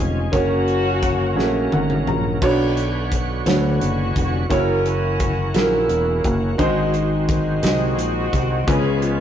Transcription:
Already playing: F1 C#3 F3 G#3 C#4 F4 G#4 C#5
0.32 F#1 F#3 A#3 C#4 F#4 G#4 C#5, kick, closed hi-hat
0.40 A#4
0.68 closed hi-hat
1.03 kick, closed hi-hat
1.36 A#1 A3 C#4 F#4 G#4, snare
1.42 A#3
1.72 G#1 F#5, high tom
1.90 mid tom
2.07 A#1 A#5, mid tom
2.41 B1 B2 D3 B3 D4 F#4 C#5, kick, crash
2.77 closed hi-hat
3.12 kick, closed hi-hat
3.46 D2 D3 B3 C#4 D4 F#4 C#5, snare, closed hi-hat
3.81 F#1, closed hi-hat
4.16 F1, kick, closed hi-hat
4.49 F#1 E3 A#3 C#4 E4 F#4 A#4 C#5, kick, closed hi-hat
4.57 F#4
4.86 F#4, closed hi-hat
5.20 F#4, kick, closed hi-hat
5.54 A#1 A#3 C#4 E4 F#4 G#4, snare, closed hi-hat
5.62 A#4
5.89 E1, closed hi-hat
6.24 F#1, kick, closed hi-hat
6.58 G#1 G#2 D#3 G#3 C4 D#4 F#4 C5, kick, closed hi-hat
6.94 closed hi-hat
7.29 kick, closed hi-hat
7.63 C2 G#3 C4 D#4 F#4 D#5, snare, closed hi-hat
7.97 A#1, closed hi-hat
8.33 C2, kick, closed hi-hat
8.67 C#2 C#3 F3 G#3 B3 C#4 F4 G4 G#4 B4, kick, closed hi-hat
8.74 G#4
9.02 F4, closed hi-hat

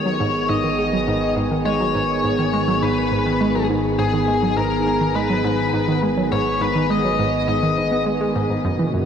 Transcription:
Already playing: G#1 D#3 B3 G#4 C#5
0.06 F#3
0.20 G#2
0.49 G#2 D#5
0.64 D#3
0.79 G#3
0.93 F#3
1.08 G#2
1.37 G#2
1.51 D#3
1.66 G#3 C#5
1.80 F#3
1.95 G#2
2.24 G#2
2.39 D#3
2.53 G#3
2.68 F#3
2.82 G#2 B4
3.11 G#2
3.26 D#3
3.41 G#3
3.55 F#3
3.70 G#2
3.99 G#2 G#4
4.13 D#3
4.28 G#3
4.43 F#3
4.57 G#2 A#4
4.86 G#2
5.01 D#3
5.15 G#3 B4
5.30 F#3
5.44 G#2
5.73 G#2
5.88 D#3
6.03 G#3
6.17 F#3
6.32 G#2 C#5
6.61 G#2 B4
6.75 D#3
6.90 G#3 D#5
7.05 F#3
7.19 G#2
7.48 G#2 D#5
7.63 D#3
7.77 G#2
7.92 B3
8.06 G#3
8.21 G#3
8.35 G#2
8.50 G#2
8.65 F#1 F#2 A#2 C#3 F#4
8.79 E3
8.94 F#2

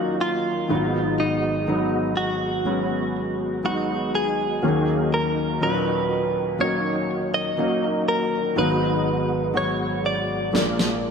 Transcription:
Already playing: D#2 D#3 F#3 A#3 C#4 D#4 F4 F#4
0.21 F4
0.69 G#1 G#2 F#3 G#3 B3 D#4
1.20 D#4
1.67 F#3 G#3 B3 D#4
2.17 F#4
2.65 F#3 G#3 B3 C#4
3.64 F#3 G#3 B3 D#4 F#4
4.15 G#4
4.62 D#2 D#3 F#3 A#3 C#4 D#4
5.14 A#4
5.61 A#2 F#3 C#4 D#4 B4
6.59 F#3 A#3 C#4 D#4 C#5
7.34 D#5
7.57 F#3 A#3 C#4 D#4
8.08 A#4
8.56 G#1 G#2 F#3 G#3 B3 D#4 B4
9.54 F#3 G#3 B3 F#4 C#5
10.06 D5
10.53 A#1 A#2 F3 G#3 A#3 D4, snare
10.79 snare

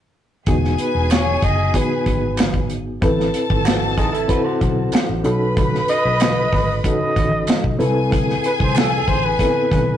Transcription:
0.46 E1 B3 D#4 F#4 G#4 G#5, kick, closed hi-hat
0.65 snare
0.78 B4, closed hi-hat
0.95 E1
1.11 C#5, snare, clap, closed hi-hat
1.42 F#1 D#5, kick, closed hi-hat
1.73 B3 D#4 F#4 G#4 B4, kick, closed hi-hat
2.06 G#1, kick, closed hi-hat
2.37 snare, clap, closed hi-hat
2.54 kick, closed hi-hat
2.70 closed hi-hat
3.01 A1 C4 E4 A4 B4 A5, kick, closed hi-hat
3.20 snare
3.34 closed hi-hat
3.50 G#1, kick
3.65 C4 F#4, snare, clap, closed hi-hat
3.97 A1 D#4 G#4, kick, snare, closed hi-hat
4.12 E4 A4, closed hi-hat
4.28 C4 E4 F#4 A4 B4 C5, kick, closed hi-hat
4.44 F#4 C5
4.61 B1, kick, closed hi-hat
4.92 snare, clap, closed hi-hat
5.09 A1
5.24 B1 C#4 D#4 F#4 A4 B4 B5, closed hi-hat
5.57 kick, closed hi-hat, muted conga
5.75 snare
5.88 D#5, closed hi-hat
6.05 B1
6.20 snare, clap, closed hi-hat, high conga
6.53 G#1, kick, snare, open hi-hat, muted conga
6.84 C#4 D#4 F#4 A4 D#5, kick, closed hi-hat, muted conga
7.01 muted fingered electric bass stroke
7.16 A1, kick, closed hi-hat, low conga
7.47 snare, clap, closed hi-hat, high conga
7.64 B1, kick
7.78 C2 C4 E4 G#4 A4 B4 G#5, closed hi-hat, high conga
8.11 kick, closed hi-hat, muted conga
8.30 snare
8.44 B4, closed hi-hat
8.60 C2 C5, kick
8.76 A4, snare, clap, closed hi-hat, high conga
8.94 A4
9.08 A1 C5, kick, closed hi-hat
9.25 B4
9.38 B3 E4 A4 B4, kick, closed hi-hat, muted conga
9.45 C4
9.71 B1, kick, closed hi-hat, low conga

